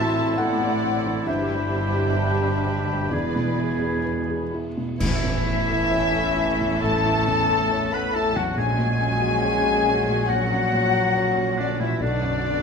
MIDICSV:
0, 0, Header, 1, 13, 480
1, 0, Start_track
1, 0, Tempo, 896861
1, 683, Time_signature, 4, 2, 24, 8
1, 1171, Tempo, 936037
1, 2611, Tempo, 911854
1, 3571, Tempo, 864553
1, 6794, End_track
2, 0, Start_track
2, 0, Title_t, "Flute section"
2, 0, Program_c, 0, 73
2, 0, Note_on_c, 0, 84, 64
2, 660, Note_off_c, 0, 84, 0
2, 675, Note_on_c, 0, 83, 68
2, 2415, Note_off_c, 0, 83, 0
2, 2612, Note_on_c, 0, 76, 77
2, 3550, Note_off_c, 0, 76, 0
2, 3579, Note_on_c, 0, 81, 83
2, 4183, Note_off_c, 0, 81, 0
2, 4192, Note_on_c, 0, 83, 77
2, 4304, Note_on_c, 0, 81, 75
2, 4305, Note_off_c, 0, 83, 0
2, 4418, Note_off_c, 0, 81, 0
2, 4424, Note_on_c, 0, 78, 70
2, 4540, Note_off_c, 0, 78, 0
2, 4550, Note_on_c, 0, 80, 84
2, 5500, Note_off_c, 0, 80, 0
2, 5504, Note_on_c, 0, 78, 86
2, 6058, Note_off_c, 0, 78, 0
2, 6223, Note_on_c, 0, 74, 66
2, 6337, Note_off_c, 0, 74, 0
2, 6342, Note_on_c, 0, 76, 68
2, 6455, Note_off_c, 0, 76, 0
2, 6461, Note_on_c, 0, 74, 75
2, 6794, Note_off_c, 0, 74, 0
2, 6794, End_track
3, 0, Start_track
3, 0, Title_t, "Violin section"
3, 0, Program_c, 1, 48
3, 0, Note_on_c, 1, 81, 99
3, 205, Note_off_c, 1, 81, 0
3, 207, Note_on_c, 1, 78, 96
3, 666, Note_on_c, 1, 76, 76
3, 673, Note_off_c, 1, 78, 0
3, 1626, Note_off_c, 1, 76, 0
3, 1648, Note_on_c, 1, 74, 79
3, 2122, Note_off_c, 1, 74, 0
3, 2612, Note_on_c, 1, 76, 112
3, 3550, Note_off_c, 1, 76, 0
3, 3570, Note_on_c, 1, 81, 102
3, 4179, Note_off_c, 1, 81, 0
3, 4191, Note_on_c, 1, 83, 86
3, 4302, Note_on_c, 1, 81, 97
3, 4304, Note_off_c, 1, 83, 0
3, 4420, Note_off_c, 1, 81, 0
3, 4436, Note_on_c, 1, 78, 82
3, 4541, Note_on_c, 1, 80, 113
3, 4546, Note_off_c, 1, 78, 0
3, 5476, Note_off_c, 1, 80, 0
3, 5496, Note_on_c, 1, 78, 99
3, 6215, Note_off_c, 1, 78, 0
3, 6225, Note_on_c, 1, 74, 79
3, 6340, Note_off_c, 1, 74, 0
3, 6352, Note_on_c, 1, 76, 71
3, 6460, Note_on_c, 1, 74, 99
3, 6463, Note_off_c, 1, 76, 0
3, 6794, Note_off_c, 1, 74, 0
3, 6794, End_track
4, 0, Start_track
4, 0, Title_t, "Violin section"
4, 0, Program_c, 2, 48
4, 0, Note_on_c, 2, 76, 88
4, 204, Note_off_c, 2, 76, 0
4, 207, Note_on_c, 2, 74, 85
4, 680, Note_on_c, 2, 72, 74
4, 682, Note_off_c, 2, 74, 0
4, 1648, Note_on_c, 2, 71, 75
4, 1652, Note_off_c, 2, 72, 0
4, 2122, Note_off_c, 2, 71, 0
4, 2613, Note_on_c, 2, 64, 69
4, 2617, Note_on_c, 2, 69, 74
4, 4516, Note_off_c, 2, 64, 0
4, 4518, Note_off_c, 2, 69, 0
4, 4543, Note_on_c, 2, 66, 67
4, 4544, Note_on_c, 2, 61, 72
4, 6451, Note_off_c, 2, 66, 0
4, 6457, Note_off_c, 2, 61, 0
4, 6458, Note_on_c, 2, 66, 67
4, 6460, Note_on_c, 2, 62, 63
4, 6794, Note_off_c, 2, 62, 0
4, 6794, Note_off_c, 2, 66, 0
4, 6794, End_track
5, 0, Start_track
5, 0, Title_t, "Oboe"
5, 0, Program_c, 3, 68
5, 0, Note_on_c, 3, 69, 69
5, 661, Note_off_c, 3, 69, 0
5, 682, Note_on_c, 3, 67, 69
5, 1656, Note_on_c, 3, 68, 71
5, 1664, Note_off_c, 3, 67, 0
5, 2441, Note_off_c, 3, 68, 0
5, 2611, Note_on_c, 3, 64, 83
5, 3550, Note_off_c, 3, 64, 0
5, 3571, Note_on_c, 3, 69, 82
5, 4191, Note_on_c, 3, 71, 76
5, 4200, Note_off_c, 3, 69, 0
5, 4307, Note_on_c, 3, 69, 67
5, 4315, Note_off_c, 3, 71, 0
5, 4427, Note_on_c, 3, 66, 74
5, 4436, Note_off_c, 3, 69, 0
5, 4542, Note_off_c, 3, 66, 0
5, 4546, Note_on_c, 3, 68, 81
5, 5499, Note_on_c, 3, 66, 86
5, 5507, Note_off_c, 3, 68, 0
5, 6213, Note_on_c, 3, 62, 68
5, 6221, Note_off_c, 3, 66, 0
5, 6333, Note_on_c, 3, 64, 65
5, 6341, Note_off_c, 3, 62, 0
5, 6453, Note_off_c, 3, 64, 0
5, 6462, Note_on_c, 3, 62, 82
5, 6794, Note_off_c, 3, 62, 0
5, 6794, End_track
6, 0, Start_track
6, 0, Title_t, "Clarinet"
6, 0, Program_c, 4, 71
6, 0, Note_on_c, 4, 64, 78
6, 1162, Note_on_c, 4, 62, 72
6, 1170, Note_off_c, 4, 64, 0
6, 1649, Note_off_c, 4, 62, 0
6, 1655, Note_on_c, 4, 64, 67
6, 2425, Note_off_c, 4, 64, 0
6, 6794, End_track
7, 0, Start_track
7, 0, Title_t, "Felt piano"
7, 0, Program_c, 5, 0
7, 0, Control_c, 5, 64, 127
7, 0, Note_on_c, 5, 45, 56
7, 0, Note_on_c, 5, 52, 51
7, 0, Note_on_c, 5, 60, 53
7, 0, Note_on_c, 5, 64, 52
7, 0, Note_on_c, 5, 69, 54
7, 0, Note_on_c, 5, 81, 97
7, 92, Note_off_c, 5, 64, 0
7, 92, Note_on_c, 5, 64, 52
7, 162, Note_off_c, 5, 52, 0
7, 187, Note_off_c, 5, 81, 0
7, 202, Note_on_c, 5, 78, 104
7, 206, Note_off_c, 5, 69, 0
7, 206, Note_on_c, 5, 69, 60
7, 280, Note_off_c, 5, 64, 0
7, 333, Note_on_c, 5, 64, 52
7, 396, Note_off_c, 5, 69, 0
7, 448, Note_off_c, 5, 60, 0
7, 448, Note_on_c, 5, 60, 52
7, 519, Note_off_c, 5, 64, 0
7, 569, Note_on_c, 5, 52, 56
7, 637, Note_off_c, 5, 60, 0
7, 657, Note_off_c, 5, 45, 0
7, 659, Note_off_c, 5, 78, 0
7, 681, Note_on_c, 5, 76, 80
7, 685, Note_off_c, 5, 52, 0
7, 690, Note_on_c, 5, 43, 57
7, 692, Control_c, 5, 64, 0
7, 769, Control_c, 5, 64, 127
7, 806, Note_on_c, 5, 50, 54
7, 929, Note_on_c, 5, 62, 48
7, 1000, Note_off_c, 5, 50, 0
7, 1046, Note_on_c, 5, 67, 54
7, 1124, Note_off_c, 5, 62, 0
7, 1173, Note_on_c, 5, 74, 50
7, 1241, Note_off_c, 5, 67, 0
7, 1285, Note_on_c, 5, 67, 47
7, 1363, Note_off_c, 5, 74, 0
7, 1406, Note_on_c, 5, 62, 51
7, 1480, Note_off_c, 5, 67, 0
7, 1522, Note_on_c, 5, 50, 45
7, 1602, Note_off_c, 5, 62, 0
7, 1631, Note_off_c, 5, 76, 0
7, 1636, Note_off_c, 5, 43, 0
7, 1644, Note_on_c, 5, 40, 60
7, 1645, Note_on_c, 5, 74, 67
7, 1648, Note_off_c, 5, 50, 0
7, 1663, Control_c, 5, 64, 0
7, 1765, Control_c, 5, 64, 127
7, 1769, Note_on_c, 5, 47, 50
7, 1886, Note_on_c, 5, 64, 50
7, 1965, Note_off_c, 5, 47, 0
7, 2005, Note_on_c, 5, 68, 42
7, 2082, Note_off_c, 5, 64, 0
7, 2110, Note_off_c, 5, 74, 0
7, 2125, Note_on_c, 5, 71, 52
7, 2201, Note_off_c, 5, 68, 0
7, 2253, Note_on_c, 5, 68, 51
7, 2321, Note_off_c, 5, 71, 0
7, 2378, Note_on_c, 5, 64, 55
7, 2445, Note_off_c, 5, 68, 0
7, 2497, Note_on_c, 5, 47, 51
7, 2566, Note_off_c, 5, 64, 0
7, 2585, Note_off_c, 5, 40, 0
7, 2610, Note_on_c, 5, 33, 64
7, 2612, Note_off_c, 5, 47, 0
7, 2621, Control_c, 5, 64, 0
7, 2727, Control_c, 5, 64, 127
7, 2736, Note_on_c, 5, 40, 51
7, 2856, Note_on_c, 5, 64, 43
7, 2923, Note_off_c, 5, 40, 0
7, 2977, Note_on_c, 5, 69, 52
7, 3042, Note_off_c, 5, 64, 0
7, 3092, Note_on_c, 5, 73, 51
7, 3162, Note_off_c, 5, 69, 0
7, 3210, Note_on_c, 5, 69, 49
7, 3281, Note_off_c, 5, 73, 0
7, 3331, Note_on_c, 5, 64, 52
7, 3403, Note_off_c, 5, 69, 0
7, 3459, Note_on_c, 5, 40, 45
7, 3524, Note_off_c, 5, 64, 0
7, 3549, Note_off_c, 5, 33, 0
7, 3577, Note_on_c, 5, 33, 52
7, 3651, Note_off_c, 5, 40, 0
7, 3704, Note_on_c, 5, 64, 48
7, 3822, Note_on_c, 5, 40, 49
7, 3895, Note_off_c, 5, 64, 0
7, 3947, Note_on_c, 5, 69, 43
7, 4014, Note_off_c, 5, 40, 0
7, 4069, Note_on_c, 5, 73, 56
7, 4135, Note_off_c, 5, 69, 0
7, 4187, Note_on_c, 5, 69, 49
7, 4256, Note_off_c, 5, 73, 0
7, 4311, Note_on_c, 5, 64, 50
7, 4374, Note_off_c, 5, 69, 0
7, 4424, Note_on_c, 5, 40, 52
7, 4495, Note_off_c, 5, 64, 0
7, 4518, Note_off_c, 5, 33, 0
7, 4540, Note_off_c, 5, 40, 0
7, 4542, Note_on_c, 5, 34, 58
7, 4546, Control_c, 5, 64, 0
7, 4640, Control_c, 5, 64, 127
7, 4663, Note_on_c, 5, 46, 48
7, 4782, Note_on_c, 5, 61, 45
7, 4852, Note_off_c, 5, 46, 0
7, 4899, Note_on_c, 5, 66, 47
7, 4971, Note_off_c, 5, 61, 0
7, 5020, Note_on_c, 5, 73, 48
7, 5089, Note_off_c, 5, 66, 0
7, 5136, Note_on_c, 5, 66, 48
7, 5209, Note_off_c, 5, 73, 0
7, 5258, Note_on_c, 5, 61, 53
7, 5326, Note_off_c, 5, 66, 0
7, 5380, Note_on_c, 5, 46, 48
7, 5447, Note_off_c, 5, 61, 0
7, 5474, Note_off_c, 5, 34, 0
7, 5498, Note_on_c, 5, 34, 49
7, 5568, Note_off_c, 5, 46, 0
7, 5625, Note_on_c, 5, 61, 48
7, 5740, Note_on_c, 5, 46, 46
7, 5811, Note_off_c, 5, 61, 0
7, 5860, Note_on_c, 5, 66, 43
7, 5928, Note_off_c, 5, 46, 0
7, 5971, Note_on_c, 5, 73, 54
7, 6049, Note_off_c, 5, 66, 0
7, 6091, Note_on_c, 5, 66, 47
7, 6164, Note_off_c, 5, 73, 0
7, 6216, Note_on_c, 5, 61, 49
7, 6285, Note_off_c, 5, 66, 0
7, 6334, Note_on_c, 5, 46, 55
7, 6407, Note_off_c, 5, 61, 0
7, 6434, Note_off_c, 5, 34, 0
7, 6447, Note_on_c, 5, 35, 62
7, 6453, Note_off_c, 5, 46, 0
7, 6464, Control_c, 5, 64, 0
7, 6543, Control_c, 5, 64, 127
7, 6569, Note_on_c, 5, 42, 49
7, 6689, Note_on_c, 5, 62, 44
7, 6761, Note_off_c, 5, 42, 0
7, 6794, Note_off_c, 5, 35, 0
7, 6794, Note_off_c, 5, 62, 0
7, 6794, End_track
8, 0, Start_track
8, 0, Title_t, "Viola section"
8, 0, Program_c, 6, 48
8, 0, Note_on_c, 6, 60, 68
8, 0, Note_on_c, 6, 66, 73
8, 203, Note_on_c, 6, 59, 74
8, 205, Note_on_c, 6, 64, 64
8, 207, Note_off_c, 6, 60, 0
8, 207, Note_off_c, 6, 66, 0
8, 435, Note_on_c, 6, 57, 72
8, 437, Note_off_c, 6, 59, 0
8, 676, Note_on_c, 6, 62, 75
8, 677, Note_on_c, 6, 67, 76
8, 678, Note_off_c, 6, 57, 0
8, 682, Note_off_c, 6, 64, 0
8, 917, Note_off_c, 6, 67, 0
8, 923, Note_on_c, 6, 67, 74
8, 1637, Note_off_c, 6, 67, 0
8, 1649, Note_off_c, 6, 62, 0
8, 1653, Note_on_c, 6, 68, 70
8, 1655, Note_on_c, 6, 59, 70
8, 2489, Note_off_c, 6, 59, 0
8, 2505, Note_off_c, 6, 68, 0
8, 2613, Note_on_c, 6, 52, 71
8, 2614, Note_on_c, 6, 61, 74
8, 4516, Note_off_c, 6, 52, 0
8, 4517, Note_off_c, 6, 61, 0
8, 4544, Note_on_c, 6, 54, 69
8, 4545, Note_on_c, 6, 61, 66
8, 6435, Note_off_c, 6, 54, 0
8, 6435, Note_off_c, 6, 61, 0
8, 6459, Note_on_c, 6, 54, 64
8, 6460, Note_on_c, 6, 59, 65
8, 6794, Note_off_c, 6, 54, 0
8, 6794, Note_off_c, 6, 59, 0
8, 6794, End_track
9, 0, Start_track
9, 0, Title_t, "French horn section"
9, 0, Program_c, 7, 60
9, 0, Note_on_c, 7, 48, 74
9, 0, Note_on_c, 7, 64, 72
9, 577, Note_off_c, 7, 48, 0
9, 577, Note_off_c, 7, 64, 0
9, 668, Note_on_c, 7, 47, 80
9, 672, Note_on_c, 7, 67, 76
9, 1629, Note_off_c, 7, 67, 0
9, 1643, Note_on_c, 7, 68, 63
9, 2412, Note_off_c, 7, 47, 0
9, 2435, Note_off_c, 7, 68, 0
9, 2605, Note_on_c, 7, 52, 96
9, 3547, Note_off_c, 7, 52, 0
9, 3574, Note_on_c, 7, 57, 81
9, 4181, Note_off_c, 7, 57, 0
9, 4184, Note_on_c, 7, 59, 77
9, 4296, Note_on_c, 7, 57, 82
9, 4301, Note_off_c, 7, 59, 0
9, 4414, Note_on_c, 7, 54, 72
9, 4416, Note_off_c, 7, 57, 0
9, 4533, Note_on_c, 7, 56, 95
9, 4535, Note_off_c, 7, 54, 0
9, 5472, Note_off_c, 7, 56, 0
9, 5496, Note_on_c, 7, 54, 84
9, 6215, Note_off_c, 7, 54, 0
9, 6223, Note_on_c, 7, 50, 69
9, 6334, Note_on_c, 7, 52, 67
9, 6339, Note_off_c, 7, 50, 0
9, 6453, Note_off_c, 7, 52, 0
9, 6456, Note_on_c, 7, 50, 83
9, 6794, Note_off_c, 7, 50, 0
9, 6794, End_track
10, 0, Start_track
10, 0, Title_t, "Cello section"
10, 0, Program_c, 8, 48
10, 0, Note_on_c, 8, 45, 75
10, 660, Note_off_c, 8, 45, 0
10, 676, Note_on_c, 8, 43, 79
10, 1631, Note_off_c, 8, 43, 0
10, 1651, Note_on_c, 8, 40, 68
10, 2503, Note_off_c, 8, 40, 0
10, 2614, Note_on_c, 8, 45, 75
10, 4517, Note_off_c, 8, 45, 0
10, 4541, Note_on_c, 8, 46, 71
10, 6433, Note_off_c, 8, 46, 0
10, 6461, Note_on_c, 8, 47, 69
10, 6794, Note_off_c, 8, 47, 0
10, 6794, End_track
11, 0, Start_track
11, 0, Title_t, "Timpani"
11, 0, Program_c, 10, 47
11, 2616, Note_on_c, 10, 45, 98
11, 3309, Note_off_c, 10, 45, 0
11, 6794, End_track
12, 0, Start_track
12, 0, Title_t, "Double bass section"
12, 0, Program_c, 11, 48
12, 0, Note_on_c, 11, 33, 74
12, 660, Note_off_c, 11, 33, 0
12, 676, Note_on_c, 11, 31, 70
12, 1630, Note_off_c, 11, 31, 0
12, 1647, Note_on_c, 11, 28, 66
12, 2502, Note_off_c, 11, 28, 0
12, 2611, Note_on_c, 11, 33, 80
12, 4515, Note_off_c, 11, 33, 0
12, 4538, Note_on_c, 11, 34, 66
12, 6432, Note_off_c, 11, 34, 0
12, 6453, Note_on_c, 11, 35, 64
12, 6794, Note_off_c, 11, 35, 0
12, 6794, End_track
13, 0, Start_track
13, 0, Title_t, "Drums"
13, 2616, Note_on_c, 9, 35, 73
13, 2616, Note_on_c, 9, 49, 82
13, 2668, Note_off_c, 9, 35, 0
13, 2668, Note_off_c, 9, 49, 0
13, 6794, End_track
0, 0, End_of_file